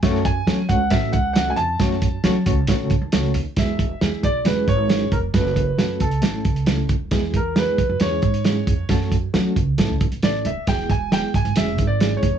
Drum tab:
HH |x-x-x-x-x-x-x-x-|x-x-x-x-x-x-x-x-|x-x-x-x-x-x-x-x-|x-x-x-xxx-xxx-x-|
SD |oo--o---o---o---|oo--o---o---o---|o---o---o---o---|oo--o---o---o---|
BD |o-o---o-o-o-----|o-o---o-o-o-----|o-o---o---o---o-|o-o---o---o---o-|

HH |x-x-x-x-x-xxx-x-|x-x-x-x-x-xxx-x-|x-x-x-xxx-x-x-x-|
SD |oo--o---o---o---|oo--o---o---o---|oo--o---o---o---|
BD |o-o---o---o---o-|o-o---o---o-----|o-o---o---o---o-|